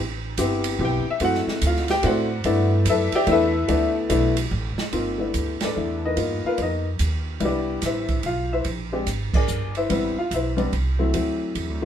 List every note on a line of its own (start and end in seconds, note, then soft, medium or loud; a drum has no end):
0.00 0.37 A1 medium
0.37 0.78 G1 medium
0.37 0.78 B3 medium
0.37 0.78 C4 medium
0.37 0.78 E4 medium
0.37 0.78 G4 medium
0.37 kick soft
0.37 hi-hat pedal medium
0.37 ride medium
0.64 ride medium
0.79 1.04 B1 loud
0.79 1.04 B3 medium
0.79 1.04 C4 medium
0.79 1.04 E4 medium
0.79 1.04 G4 medium
0.79 kick soft
0.85 1.08 G5 loud
1.06 muted upright bass stroke soft
1.10 1.23 E5 loud
1.20 1.45 F#2 medium
1.20 1.84 A3 medium
1.20 1.84 C4 medium
1.20 1.84 E4 medium
1.20 1.84 F#4 medium
1.20 kick soft
1.20 ride medium
1.24 1.39 F#5 loud
1.34 snare soft
1.47 muted upright bass stroke soft
1.47 snare medium
1.61 2.02 D2 medium
1.61 kick soft
1.61 hi-hat pedal medium
1.61 ride medium
1.67 1.90 F4 medium
1.67 1.90 F5 loud
1.76 snare soft
1.88 2.04 G4 medium
1.88 2.04 G5 loud
1.88 snare medium
1.88 ride medium
2.03 2.44 A2 loud
2.03 2.27 A3 medium
2.03 2.27 C4 medium
2.03 2.28 E4 medium
2.03 2.05 F#4 medium
2.03 2.69 D5 medium
2.03 2.69 F#5 medium
2.03 kick soft
2.03 ride medium
2.07 2.69 F#4 medium
2.07 2.44 C5 medium
2.44 2.85 G2 medium
2.44 3.08 A3 medium
2.44 3.08 B3 medium
2.44 3.08 D4 medium
2.44 2.88 E4 loud
2.44 kick soft
2.44 ride medium
2.85 3.11 F#2 loud
2.85 3.14 E5 loud
2.85 kick soft
2.85 hi-hat pedal medium
2.85 ride medium
2.90 3.14 E4 medium
2.90 3.14 A4 medium
2.90 3.14 B4 medium
3.12 3.29 G4 loud
3.12 3.29 D5 loud
3.12 3.28 E5 medium
3.12 3.28 G5 loud
3.12 muted upright bass stroke soft
3.12 ride medium
3.27 3.67 E2 loud
3.27 3.51 A3 medium
3.27 3.51 B3 medium
3.27 3.51 D4 medium
3.27 3.31 E4 loud
3.27 kick soft
3.27 ride medium
3.31 3.67 E4 medium
3.31 3.94 A4 medium
3.31 3.94 B4 medium
3.31 3.93 E5 loud
3.68 4.09 D2 medium
3.68 4.08 A3 medium
3.68 4.08 B3 medium
3.68 4.08 D4 medium
3.68 4.09 E4 medium
3.68 kick soft
3.68 ride medium
4.10 4.50 B1 loud
4.10 4.34 A3 medium
4.10 4.34 B3 medium
4.10 4.34 D4 medium
4.10 4.34 E4 loud
4.10 kick soft
4.10 hi-hat pedal medium
4.10 ride medium
4.37 ride medium
4.51 4.76 A1 loud
4.51 kick soft
4.78 muted upright bass stroke soft
4.78 snare medium
4.93 5.33 G1 medium
4.93 5.17 A#3 medium
4.93 5.17 C4 medium
4.93 5.17 D#4 medium
4.93 5.17 F4 medium
4.93 kick soft
4.93 ride medium
5.18 5.55 A3 medium
5.18 5.55 B3 medium
5.18 5.56 D4 medium
5.18 5.55 E4 medium
5.34 5.59 D2 medium
5.34 kick soft
5.34 hi-hat pedal soft
5.34 ride medium
5.61 6.01 A4 medium
5.61 6.01 B4 medium
5.61 6.01 D5 medium
5.61 muted upright bass stroke soft
5.61 snare medium
5.61 ride medium
5.65 5.74 D4 medium
5.76 6.17 E2 medium
5.76 6.17 A3 medium
5.76 6.15 B3 soft
5.76 6.17 D4 soft
5.76 6.17 E4 medium
6.05 6.15 D#4 medium
6.05 6.43 A#4 medium
6.05 6.43 B4 medium
6.05 6.43 D#5 medium
6.16 6.42 G2 medium
6.16 6.79 A#3 medium
6.16 6.80 B3 medium
6.16 6.61 D#4 medium
6.16 6.45 F4 medium
6.16 kick soft
6.16 ride medium
6.44 6.59 F4 medium
6.44 6.60 A#4 medium
6.44 6.60 B4 medium
6.44 6.59 F5 medium
6.44 muted upright bass stroke soft
6.57 6.99 F2 medium
6.57 6.60 D5 medium
6.57 kick soft
6.57 ride medium
6.62 6.86 D#4 medium
6.62 6.86 A#4 medium
6.62 6.86 B4 medium
6.62 6.86 D#5 medium
6.99 7.40 D#2 medium
6.99 kick soft
6.99 hi-hat pedal medium
6.99 ride medium
7.40 7.81 C2 medium
7.40 8.04 G3 medium
7.40 8.04 B3 medium
7.40 7.44 D4 medium
7.40 7.84 E4 medium
7.40 kick soft
7.40 ride medium
7.45 7.82 D4 medium
7.45 7.82 G4 medium
7.45 7.82 B4 medium
7.45 7.82 D5 medium
7.82 8.23 A1 medium
7.82 8.23 E4 medium
7.82 8.23 B4 medium
7.82 8.23 C5 medium
7.82 kick soft
7.82 snare soft
7.82 hi-hat pedal medium
7.82 ride medium
7.86 8.23 E5 medium
8.08 kick medium
8.08 ride soft
8.23 8.64 B1 medium
8.23 8.51 F4 medium
8.23 8.51 F5 medium
8.23 kick soft
8.23 ride medium
8.53 8.66 E4 medium
8.53 8.67 B4 medium
8.53 8.67 C5 medium
8.53 8.66 E5 medium
8.64 9.06 A#1 medium
8.64 kick soft
8.64 ride medium
8.92 9.06 G#3 medium
8.92 9.06 C4 medium
8.92 9.06 D4 medium
8.92 9.06 G4 medium
9.07 9.32 G#1 medium
9.07 kick soft
9.07 hi-hat pedal soft
9.07 ride medium
9.34 9.73 D4 medium
9.34 9.73 G#4 medium
9.34 9.74 A#4 medium
9.34 9.73 D5 medium
9.34 muted upright bass stroke soft
9.34 kick medium
9.34 crash medium
9.48 9.89 G1 medium
9.48 hi-hat pedal medium
9.75 9.89 E4 medium
9.75 10.15 B4 medium
9.75 10.15 C5 medium
9.75 10.15 E5 medium
9.75 ride soft
9.89 10.15 A1 medium
9.89 10.14 G3 medium
9.89 10.14 B3 medium
9.89 10.14 C4 medium
9.89 10.14 E4 medium
9.89 kick soft
9.89 ride medium
10.17 10.32 F4 medium
10.17 10.32 F5 medium
10.17 muted upright bass stroke soft
10.31 10.71 B1 medium
10.31 10.50 E4 medium
10.31 10.50 B4 medium
10.31 10.50 C5 medium
10.31 10.49 E5 medium
10.31 kick soft
10.31 hi-hat pedal soft
10.31 ride medium
10.57 10.71 G3 medium
10.57 10.71 B3 medium
10.57 10.71 C4 medium
10.57 10.71 D4 medium
10.57 ride soft
10.72 11.13 C2 medium
10.72 kick soft
10.72 ride medium
10.99 11.12 F#3 medium
10.99 11.13 A3 medium
10.99 11.13 C4 medium
10.99 11.13 E4 medium
11.14 11.55 D2 medium
11.14 11.77 F#3 medium
11.14 11.77 A3 medium
11.14 11.77 C4 medium
11.14 11.77 E4 medium
11.14 kick soft
11.14 ride medium
11.55 11.69 E2 medium
11.55 kick soft
11.55 ride medium
11.69 11.83 D2 medium